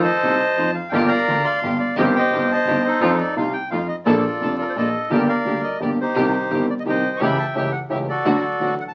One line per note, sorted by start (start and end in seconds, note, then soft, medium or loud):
0.00 0.36 A4 medium
0.00 0.76 A5 loud
0.04 0.71 C5 medium
0.04 0.71 D#5 medium
0.22 0.37 C2 medium
0.22 0.38 C2 medium
0.22 0.38 C3 soft
0.22 0.37 A3 soft
0.22 0.37 D#4 soft
0.22 0.37 F4 soft
0.57 0.72 F2 medium
0.57 0.73 F2 soft
0.57 0.73 F3 soft
0.57 0.72 A3 soft
0.57 0.72 D#4 soft
0.57 0.72 F4 soft
0.74 0.93 F5 medium
0.89 1.07 G1 medium
0.89 1.07 G2 medium
0.89 1.07 D3 medium
0.89 1.07 G3 medium
0.89 1.07 A#3 medium
0.89 1.08 A#3 medium
0.89 1.08 F4 medium
0.89 1.42 A#4 medium
0.89 1.10 D5 medium
0.89 1.09 G5 medium
0.93 1.08 G4 medium
1.08 1.60 D5 medium
1.08 1.45 F5 medium
1.08 1.45 A#5 loud
1.28 1.43 D2 soft
1.28 1.43 D2 medium
1.28 1.43 D3 medium
1.28 1.42 A#3 soft
1.28 1.43 F4 soft
1.28 1.43 G4 soft
1.45 1.95 F5 medium
1.45 1.77 C6 loud
1.62 1.77 G1 medium
1.62 1.78 G1 medium
1.62 1.78 G2 soft
1.62 1.77 A#3 soft
1.62 1.77 F4 soft
1.62 1.77 G4 medium
1.80 1.96 D5 medium
1.96 2.12 G1 medium
1.96 2.13 G1 medium
1.96 2.13 G2 medium
1.96 2.13 D#3 medium
1.96 2.13 G3 medium
1.96 2.12 C4 medium
1.96 2.13 C4 medium
1.96 2.12 D#4 medium
1.96 2.12 G4 medium
1.96 2.13 G4 medium
1.96 2.47 G4 medium
1.96 2.17 C5 medium
1.96 2.05 D#5 medium
2.16 2.53 C5 medium
2.16 2.52 D#5 medium
2.16 2.51 G5 medium
2.31 2.47 G1 medium
2.31 2.48 G1 medium
2.31 2.48 G2 medium
2.31 2.47 C4 soft
2.31 2.47 D#4 soft
2.31 2.48 G4 medium
2.52 2.83 C5 medium
2.52 3.00 D#5 medium
2.52 2.83 A5 loud
2.66 2.81 G1 medium
2.66 2.82 G1 soft
2.66 2.82 G2 medium
2.66 2.82 C4 soft
2.66 2.82 D#4 soft
2.66 2.82 G4 medium
2.84 3.35 D#4 medium
2.84 3.35 A4 medium
2.84 3.17 C5 medium
3.01 3.16 F2 medium
3.01 3.16 F3 medium
3.01 3.16 A3 medium
3.01 3.16 C4 medium
3.01 3.16 D#4 medium
3.01 3.16 F4 medium
3.01 3.17 A4 medium
3.20 3.36 D5 medium
3.35 3.51 C2 medium
3.35 3.51 C3 medium
3.35 3.52 A3 soft
3.35 3.52 D#4 soft
3.35 3.52 F4 medium
3.35 3.53 F5 medium
3.53 3.70 G5 medium
3.71 3.86 F2 medium
3.71 3.86 F3 soft
3.71 3.86 A3 soft
3.71 3.86 D#4 soft
3.71 3.87 F4 soft
3.71 3.87 F5 medium
3.88 3.96 D#5 medium
4.05 4.21 A#1 medium
4.05 4.21 A#2 medium
4.05 4.21 F3 medium
4.05 4.21 A#3 medium
4.05 4.21 D4 medium
4.05 4.89 F4 medium
4.05 4.77 A4 medium
4.05 4.21 A4 medium
4.05 4.89 D5 medium
4.40 4.56 F1 medium
4.40 4.56 F2 medium
4.40 4.56 A#3 soft
4.40 4.56 D4 soft
4.40 4.56 A4 medium
4.61 4.64 A#4 medium
4.69 4.73 C5 medium
4.76 4.91 A#1 soft
4.76 4.91 A#1 medium
4.76 4.91 A#2 soft
4.76 4.91 A#3 soft
4.76 4.91 D4 soft
4.76 4.91 A4 medium
4.76 5.10 A4 medium
4.76 5.13 D#5 medium
5.10 5.26 G1 medium
5.10 5.26 G2 medium
5.10 5.26 D3 medium
5.10 5.25 G3 soft
5.10 5.26 A#3 soft
5.10 5.26 A#3 medium
5.10 5.26 D4 medium
5.10 5.26 G4 medium
5.10 5.27 A#4 medium
5.10 5.27 D5 medium
5.10 5.17 G5 medium
5.15 5.20 A5 medium
5.19 5.29 G5 medium
5.28 5.77 A#4 medium
5.28 5.78 D5 medium
5.28 5.61 F5 medium
5.45 5.60 D2 soft
5.45 5.61 D2 medium
5.45 5.61 D3 soft
5.45 5.61 G3 soft
5.45 5.61 A#3 soft
5.45 5.61 D4 soft
5.45 5.61 G4 soft
5.64 5.80 D#5 medium
5.80 5.96 G1 soft
5.80 5.96 G1 medium
5.80 5.95 G2 soft
5.80 5.96 D3 soft
5.80 5.96 G3 soft
5.80 5.95 A#3 soft
5.80 5.96 A#3 soft
5.80 5.96 D4 soft
5.80 5.96 G4 soft
5.80 5.90 D5 medium
6.01 6.66 D#4 medium
6.01 6.66 G4 medium
6.01 6.66 C5 medium
6.15 6.31 C2 medium
6.15 6.31 C3 medium
6.15 6.31 D#3 medium
6.15 6.31 G3 medium
6.15 6.30 C4 medium
6.15 6.31 C4 medium
6.15 6.30 D#4 medium
6.15 6.30 G4 medium
6.15 6.31 G4 medium
6.49 6.65 G1 medium
6.49 6.66 G1 soft
6.49 6.66 G2 soft
6.49 6.66 D#3 soft
6.49 6.66 G3 soft
6.49 6.65 C4 soft
6.49 6.66 C4 soft
6.49 6.65 D#4 soft
6.49 6.65 G4 soft
6.49 6.66 G4 soft
6.70 6.74 D5 medium
6.80 6.83 D#5 medium
6.85 7.00 C2 medium
6.85 7.01 C2 soft
6.85 7.01 C3 soft
6.85 7.00 D#3 soft
6.85 7.01 G3 soft
6.85 7.00 C4 soft
6.85 7.01 C4 soft
6.85 7.00 D#4 soft
6.85 7.00 G4 soft
6.85 7.01 G4 soft
6.85 7.16 G5 medium
6.89 7.20 C5 medium
6.89 7.20 D#5 medium
7.17 7.35 C#2 medium
7.17 7.35 A3 medium
7.17 7.35 C#4 medium
7.17 7.35 G4 medium
7.17 7.21 C#6 medium
7.21 7.36 C#2 medium
7.21 7.36 C#3 medium
7.21 7.35 E3 medium
7.21 7.36 A3 medium
7.21 7.36 C#4 medium
7.21 7.36 G4 medium
7.21 7.71 E5 medium
7.21 7.55 G5 medium
7.21 7.38 B5 medium
7.39 7.46 A5 medium
7.55 7.70 C#2 medium
7.55 7.70 C#2 soft
7.55 7.70 C#3 soft
7.55 7.70 E3 soft
7.55 7.70 A3 soft
7.55 7.70 C#4 soft
7.55 7.70 G4 soft
7.55 7.72 G5 medium
7.72 7.80 F#5 medium
7.90 8.05 C#2 medium
7.90 8.05 C#2 soft
7.90 8.05 C#3 soft
7.90 8.05 E3 soft
7.90 8.05 A3 soft
7.90 8.05 C#4 soft
7.90 8.05 G4 soft
7.90 7.98 E5 medium
8.09 8.75 F#4 medium
8.09 8.74 A4 medium
8.09 8.74 D5 medium
8.25 8.40 D2 medium
8.25 8.40 D3 medium
8.25 8.40 F#3 medium
8.25 8.40 A3 medium
8.25 8.40 A3 soft
8.25 8.40 D4 medium
8.25 8.40 F#4 medium
8.60 8.75 A1 soft
8.60 8.75 A2 soft
8.60 8.75 D3 soft
8.60 8.75 F#3 soft
8.60 8.75 A3 soft
8.60 8.75 D4 soft
8.60 8.75 F#4 soft
8.80 8.84 F#5 medium
8.88 8.92 A5 medium